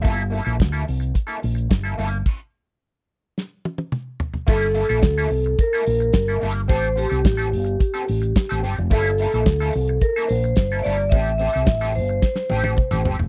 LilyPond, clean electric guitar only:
\new Staff \with { instrumentName = "Clean electric guitar" } { \time 4/4 \key g \dorian \tempo 4 = 108 <bes e' a'>16 r16 <bes e' a'>16 <bes e' a'>16 r16 <bes e' a'>16 r8. <bes e' a'>16 r8. <bes e' a'>16 <bes e' a'>16 r16 | r1 | <bes e' a'>16 r16 <bes e' a'>16 <bes e' a'>16 r16 <bes e' a'>16 r8. <bes e' a'>16 r8. <bes e' a'>16 <bes e' a'>16 r16 | <c' g' a'>16 r16 <c' g' a'>16 <c' g' a'>16 r16 <c' g' a'>16 r8. <c' g' a'>16 r8. <c' g' a'>16 <c' g' a'>16 r16 |
<bes e' a'>16 r16 <bes e' a'>16 <bes e' a'>16 r16 <bes e' a'>16 r8. <bes e' a'>16 r8. <bes e' a'>16 <bes e' a'>16 r16 | <c' g' a'>16 r16 <c' g' a'>16 <c' g' a'>16 r16 <c' g' a'>16 r4 <c' g' a'>16 <c' g' a'>16 r16 <c' g' a'>16 <c' g' a'>16 r16 | }